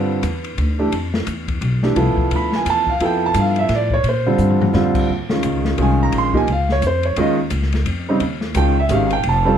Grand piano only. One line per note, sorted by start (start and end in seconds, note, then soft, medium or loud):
0.00 0.20 D3 medium
0.00 0.20 G3 medium
0.00 0.20 C4 medium
0.00 0.21 F4 medium
0.00 0.91 B4 medium
0.79 0.91 E3 medium
0.79 0.91 A3 medium
0.79 0.91 D4 medium
0.79 0.91 G4 medium
1.83 1.95 E3 medium
1.83 1.95 A3 medium
1.83 1.95 D4 medium
1.83 1.95 G4 medium
1.96 2.92 F3 medium
1.96 2.92 B3 medium
1.96 2.93 E4 medium
1.96 2.93 A4 medium
2.36 2.54 B5 medium
2.56 2.67 G#5 medium
2.70 2.89 A5 loud
2.90 3.01 F5 medium
3.01 3.97 F3 medium
3.01 3.97 B3 medium
3.01 3.97 E4 medium
3.01 3.97 A4 medium
3.06 3.24 G5 medium
3.26 3.37 A5 loud
3.40 3.58 F5 medium
3.59 3.70 E5 medium
3.75 3.93 D5 medium
3.94 4.05 C#5 medium
4.09 4.59 C5 medium
4.27 4.71 D3 medium
4.27 4.71 G3 medium
4.27 4.72 C4 medium
4.27 4.71 F4 medium
4.74 5.08 D3 medium
4.74 5.09 G3 medium
4.74 5.09 C4 medium
4.74 5.09 F4 medium
5.30 5.75 D#3 medium
5.30 5.75 G#3 medium
5.30 5.75 C#4 medium
5.30 5.75 F4 medium
5.78 6.29 D#3 medium
5.78 6.30 G#3 medium
5.78 6.30 C#4 medium
5.78 6.30 F4 medium
5.82 6.01 G#5 medium
6.03 6.14 A#5 medium
6.18 6.36 C6 loud
6.34 6.46 F3 medium
6.34 6.46 A#3 medium
6.34 6.46 D#4 medium
6.34 6.46 G4 medium
6.34 6.48 G#5 medium
6.52 6.71 F5 medium
6.72 6.83 C#5 medium
6.87 7.05 C5 medium
7.05 7.17 C#5 medium
7.17 7.36 D#3 medium
7.17 7.36 G#3 medium
7.17 7.36 C#4 medium
7.17 7.37 F4 medium
7.17 7.32 D#5 medium
8.09 8.20 C#3 medium
8.09 8.20 G3 medium
8.09 8.20 C4 medium
8.09 8.20 D#4 medium
8.56 8.74 D#3 medium
8.56 8.74 G#3 medium
8.56 8.75 C#4 medium
8.56 8.75 F4 medium
8.56 8.77 G5 medium
8.79 8.91 E5 medium
8.90 9.09 D#3 medium
8.90 9.09 G#3 medium
8.90 9.09 C#4 medium
8.90 9.09 G4 medium
8.90 9.12 F5 medium
9.13 9.24 G5 medium
9.29 9.47 A5 medium
9.45 9.58 G3 medium
9.45 9.58 C4 medium
9.45 9.58 F4 medium
9.45 9.58 A4 medium
9.45 9.58 C5 medium